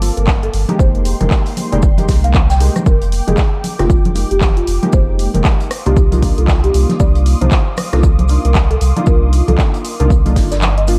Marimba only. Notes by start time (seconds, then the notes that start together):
0.17 A#4
0.43 A4
0.79 C5
1.21 A#4
1.72 D5
2.24 F5
2.50 G5
2.86 A#4
3.28 G#4
3.79 F4
4.31 G4
4.57 F4
4.93 C5
5.34 A#4
5.86 G4
6.38 A4
6.64 G4
7.00 D5
7.41 C5
7.93 A4
8.45 A#4
8.71 A4
9.07 A#4
9.48 A4
10.00 A#4
10.52 D5
10.78 D#5